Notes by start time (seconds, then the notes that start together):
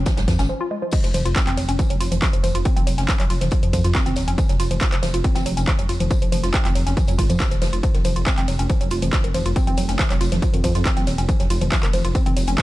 0.06 F3, kick, snare, closed hi-hat, mid tom, tambourine
0.17 G#1 F#3, snare, closed hi-hat, tambourine
0.28 F2 F3, kick, snare, open hi-hat, tambourine
0.39 G#1 C#4, snare, closed hi-hat, mid tom, tambourine
0.49 F3
0.61 F4
0.71 G#3
0.82 F3
0.91 F3, kick, closed hi-hat, crash, ride, tambourine
1.04 F1 F3, snare, closed hi-hat
1.14 F1 F3, open hi-hat, mid tom, ride, tambourine
1.25 F1 F4, closed hi-hat
1.36 C4, kick, snare, clap, closed hi-hat, ride, tambourine
1.47 F1 C4, clap, closed hi-hat, mid tom
1.57 F1 F#3, open hi-hat, ride, tambourine
1.69 F1 C#4, closed hi-hat
1.79 F3, kick, closed hi-hat, mid tom, ride, tambourine
1.90 F1 F#3, closed hi-hat
2.00 F1 F4, open hi-hat, ride, tambourine
2.12 F1 F3, closed hi-hat, mid tom
2.22 F3, kick, snare, clap, closed hi-hat, ride, tambourine
2.33 F1 F3, closed hi-hat
2.44 F1 F3, open hi-hat, mid tom, ride, tambourine
2.55 F1 F4, closed hi-hat
2.65 C4, kick, closed hi-hat, ride, tambourine
2.76 F1 C4, closed hi-hat, mid tom
2.87 F1 F#3, open hi-hat, ride, tambourine
2.98 F1 C#4, snare, closed hi-hat
3.08 F3, kick, snare, clap, closed hi-hat, mid tom, ride, tambourine
3.20 F1 F#3, clap, closed hi-hat
3.30 F1 F4, open hi-hat, ride, tambourine
3.40 F1 F3, snare, closed hi-hat, mid tom
3.51 F3, kick, closed hi-hat, ride, tambourine
3.63 F2 F3, closed hi-hat
3.73 F2 F3, kick, open hi-hat, mid tom, ride, tambourine
3.84 F2 F4, snare, closed hi-hat
3.94 C4, kick, snare, clap, closed hi-hat, ride, tambourine
4.06 F#1 C4, snare, closed hi-hat, mid tom
4.16 D#1 F#3, snare, open hi-hat, ride, tambourine
4.28 F1 C#4, closed hi-hat
4.38 F3, kick, closed hi-hat, mid tom, ride, tambourine
4.49 F1 F#3, snare, closed hi-hat
4.60 F1 F4, open hi-hat, ride, tambourine
4.71 F1 F3, closed hi-hat, mid tom
4.80 F3, kick, snare, clap, closed hi-hat, ride, tambourine
4.92 F1 F3, clap, closed hi-hat
5.03 F1 F3, snare, open hi-hat, mid tom, ride, tambourine
5.14 F1 F4, closed hi-hat
5.24 C4, kick, closed hi-hat, ride, tambourine
5.35 F1 C4, snare, closed hi-hat, mid tom, tambourine
5.45 F1 F#3, closed hi-hat, open hi-hat, ride
5.57 F1 C#4, closed hi-hat, tambourine
5.67 F3, kick, snare, clap, closed hi-hat, mid tom, ride, tambourine
5.79 F1 F#3, closed hi-hat
5.89 F1 F4, open hi-hat, ride, tambourine
6.00 F1 F3, closed hi-hat, mid tom
6.10 F3, kick, closed hi-hat, ride, tambourine
6.22 F1 F3, closed hi-hat
6.32 F1 F3, open hi-hat, mid tom, ride, tambourine
6.43 F1 F4, snare, closed hi-hat
6.53 C4, kick, snare, clap, closed hi-hat, ride, tambourine
6.65 F1 C4, clap, closed hi-hat, mid tom
6.75 F1 F#3, open hi-hat, ride, tambourine
6.87 F1 C#4, snare, closed hi-hat
6.97 F3, kick, closed hi-hat, mid tom, ride, tambourine
7.07 F2 F#3, closed hi-hat, tambourine
7.18 G#1 F4, kick, snare, open hi-hat, ride
7.29 F2 F3, closed hi-hat, mid tom, tambourine
7.40 F3, kick, snare, clap, closed hi-hat, ride, tambourine
7.50 D#1 F3, snare, closed hi-hat
7.62 F1 F3, snare, open hi-hat, mid tom, ride, tambourine
7.73 F1 F4, closed hi-hat
7.83 F3, kick, closed hi-hat, ride, tambourine
7.94 F1 D#3, snare, closed hi-hat
8.04 F1 F3, open hi-hat, mid tom, ride, tambourine
8.16 F1 F4, closed hi-hat
8.26 C4, kick, snare, clap, closed hi-hat, ride, tambourine
8.38 F1 C4, clap, closed hi-hat, mid tom
8.48 F1 F#3, open hi-hat, ride, tambourine
8.59 F1 C#4, closed hi-hat
8.69 F3, kick, closed hi-hat, mid tom, ride, tambourine
8.81 F1 F#3, closed hi-hat
8.91 F1 F4, open hi-hat, ride, tambourine
9.02 F1 F3, closed hi-hat, mid tom
9.12 F3, kick, snare, clap, closed hi-hat, ride, tambourine
9.24 F1 D#3, closed hi-hat
9.34 F1 F3, open hi-hat, mid tom, ride, tambourine
9.46 F1 F4, closed hi-hat
9.56 C4, kick, closed hi-hat, ride, tambourine
9.67 F1 C4, closed hi-hat, mid tom
9.77 F1 F#3, open hi-hat, ride, tambourine
9.89 F1 C#4, snare, closed hi-hat
9.99 F3, kick, snare, clap, closed hi-hat, mid tom, ride, tambourine
10.10 F1 F#3, clap, closed hi-hat
10.21 F1 F4, open hi-hat, ride, tambourine
10.32 F1 F3, snare, closed hi-hat, mid tom
10.42 F3, kick, closed hi-hat, ride, tambourine
10.53 F2 D#3, closed hi-hat
10.64 F2 F3, kick, open hi-hat, mid tom, ride, tambourine
10.75 F2 F4, snare, closed hi-hat
10.85 C4, kick, snare, clap, closed hi-hat, ride, tambourine
10.96 F#1 C4, snare, closed hi-hat, mid tom
11.07 D#1 F#3, snare, open hi-hat, ride, tambourine
11.18 F1 C#4, closed hi-hat
11.29 F3, kick, closed hi-hat, mid tom, ride, tambourine
11.40 F1 F#3, snare, closed hi-hat
11.50 F1 F4, open hi-hat, ride, tambourine
11.61 F1 F3, closed hi-hat, mid tom
11.72 F3, kick, snare, clap, closed hi-hat, ride, tambourine
11.83 F1 D#3, clap, closed hi-hat
11.93 F1 F3, open hi-hat, mid tom, ride, tambourine
12.05 F1 F4, closed hi-hat
12.15 C4, kick, closed hi-hat, ride, tambourine
12.26 F1 C4, closed hi-hat, mid tom
12.37 F1 F#3, open hi-hat, ride, tambourine
12.47 F1 C#4, closed hi-hat
12.58 F3, kick, snare, clap, closed hi-hat, mid tom, ride, tambourine